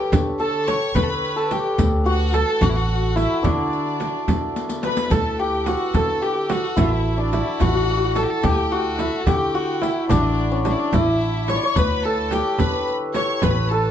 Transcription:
Already playing: violin G4, santur G4 A4 B4 C#5, violin section G5
0.12 upright bass D3, riq, frame drum, tombak dum
0.39 violin A4, santur A4, violin section A5, riq
0.67 santur C#5, violin C#5, violin section C#6, riq, tombak tek, frame drum
0.95 upright bass D3, santur B4, violin B4, violin section B5, riq, tombak dum, frame drum
1.02 violin A4
1.10 violin B4
1.24 riq
1.36 santur A4, violin section A5
1.50 violin G4, santur G4, violin section G5, riq, tombak tek, frame drum
1.78 upright bass D2, riq, frame drum, tombak dum
2.06 santur F#4, violin F#4, violin section F#5, riq
2.33 santur A4, violin A4, violin section A5, riq, tombak tek, frame drum
2.61 upright bass A1, violin F#4, santur F#4, violin section F#5, riq, tombak dum, frame drum
2.69 violin E4
2.76 violin F#4
3.16 santur E4, violin E4, violin section E5, riq, frame drum
3.43 upright bass D3, santur D4, violin D4, violin section D5, riq, frame drum, tombak dum
3.73 riq
4.00 riq, tombak tek, frame drum
4.28 upright bass D3, riq, frame drum, tombak dum
4.56 riq, tombak tek
4.69 riq, tombak ka
4.83 violin B4, santur B4, violin section B5, riq, tombak tek, frame drum
4.97 riq, tombak ka
5.10 upright bass D2, violin A4, santur A4, violin section A5, riq, tombak dum, frame drum
5.39 violin G4, santur G4, violin section G5, tombak ka
5.66 violin F#4, santur F#4, violin section F#5, riq, tombak tek, frame drum
5.94 upright bass D3, santur A4, violin A4, violin section A5, riq, tombak dum, frame drum
6.22 santur G4, violin G4, violin section G5, riq, tombak ka
6.49 santur F#4, violin F#4, violin section F#5, riq, tombak tek, frame drum
6.76 upright bass A1, santur E4, violin E4, violin section E5, riq, frame drum, tombak dum
7.06 tombak ka
7.18 santur D4, violin D4, violin section D5
7.33 santur E4, violin E4, riq, frame drum
7.60 upright bass A1, santur F#4, violin F#4, violin section F#5, riq, frame drum, tombak dum
7.69 santur F#4
7.75 santur F#4
7.83 santur F#4
7.88 santur F#4, riq, tombak ka
7.97 santur F#4
8.05 santur F#4
8.16 violin A4, santur A4, violin section A5, riq, tombak tek, frame drum
8.23 violin G4
8.30 violin A4
8.43 upright bass D2, santur G4, violin G4, violin section G5, riq, frame drum, tombak dum
8.71 violin F#4, santur F#4, tombak ka
8.98 santur E4, violin section E5, riq, tombak tek, frame drum
9.20 violin section A5
9.26 upright bass D3, violin G4, santur G4, violin section G5, riq, frame drum, tombak dum
9.54 violin F#4, santur F#4, riq, tombak ka
9.81 santur E4, violin E4, riq, tombak tek, frame drum
10.09 upright bass A1, violin D4, santur D4, violin section D5, riq, frame drum, tombak dum
10.38 riq
10.52 santur C#4
10.65 santur D4, violin D4, violin section D5, riq, tombak tek, frame drum
10.72 violin E4
10.79 violin D4
10.92 upright bass A1, violin E4, santur E4, violin section E5, riq, frame drum, tombak dum
11.21 riq, tombak ka
11.48 violin C#5, santur C#5, violin section C#6, riq, tombak tek, frame drum
11.56 santur D5
11.63 violin C#5, santur C#5
11.76 upright bass D2, violin B4, santur B4, violin section B5, riq, tombak dum, frame drum
12.04 violin A4, santur A4, violin section A5, tombak ka
12.31 santur G4, violin G4, violin section G5, riq, tombak tek, frame drum
12.58 upright bass D3, violin B4, santur B4, violin section B5, riq, frame drum, tombak dum
12.87 riq, tombak ka
13.14 violin C#5, santur C#5, violin section C#6, riq, tombak tek, frame drum
13.41 upright bass A1, violin B4, santur B4, violin section B5, riq, frame drum, tombak dum
13.63 violin B4
13.69 violin A4, santur A4, violin section A5, tombak ka

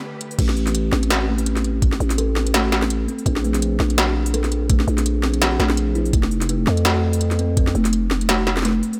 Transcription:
Already playing: cello section D3 A3 G4 B4
0.21 closed hi-hat
0.31 open hi-hat
0.39 808-style bass A1, kalimba A3, kick, closed hi-hat, crash
0.49 snare
0.57 open hi-hat
0.67 snare, open hi-hat
0.75 closed hi-hat
0.92 808-style bass A1, kalimba C4, snare
1.03 closed hi-hat
1.10 kalimba C4, snare, closed hi-hat
1.28 kalimba A3
1.38 open hi-hat
1.46 closed hi-hat
1.57 snare, open hi-hat
1.64 closed hi-hat
1.82 kick, closed hi-hat
1.92 snare
2.00 808-style bass A1, open hi-hat
2.10 snare, open hi-hat
2.18 kalimba A4, closed hi-hat
2.36 snare
2.47 closed hi-hat
2.54 kalimba A3, snare, closed hi-hat
2.72 snare
2.82 snare
2.90 closed hi-hat
3.08 kalimba C4, open hi-hat
3.19 open hi-hat
3.26 808-style bass A#1, kalimba C4, kick, closed hi-hat
3.36 snare
3.44 kalimba A3, open hi-hat
3.54 snare, open hi-hat
3.62 closed hi-hat
3.80 808-style bass A#1, snare
3.90 closed hi-hat
3.98 snare, closed hi-hat
4.26 open hi-hat
4.34 kalimba A4, closed hi-hat
4.44 snare, open hi-hat
4.52 closed hi-hat
4.70 kalimba A3, kick, closed hi-hat
4.80 snare
4.88 808-style bass A#1, open hi-hat
4.98 snare, open hi-hat
5.06 closed hi-hat
5.23 kalimba C4, snare
5.34 closed hi-hat
5.41 kalimba C4, snare, closed hi-hat
5.60 808-style bass A#1, kalimba A3, snare
5.70 snare
5.77 closed hi-hat
5.95 kalimba E4, open hi-hat
6.05 open hi-hat
6.13 808-style bass F1, kick, closed hi-hat
6.23 snare
6.31 open hi-hat
6.41 snare, open hi-hat
6.49 kalimba A3, closed hi-hat
6.67 808-style bass F2, snare
6.77 closed hi-hat
6.85 kalimba A3, snare, closed hi-hat
7.13 open hi-hat
7.21 closed hi-hat
7.31 snare, open hi-hat
7.39 kalimba C4, closed hi-hat
7.57 kalimba C4, kick, closed hi-hat
7.67 snare
7.75 808-style bass F1, kalimba A3, open hi-hat
7.85 snare, open hi-hat
7.93 closed hi-hat
8.11 snare
8.21 closed hi-hat
8.29 snare, closed hi-hat
8.47 snare
8.57 snare
8.59 snare
8.62 kalimba A3, snare
8.65 snare, closed hi-hat
8.68 snare
8.71 snare
8.83 open hi-hat
8.93 open hi-hat

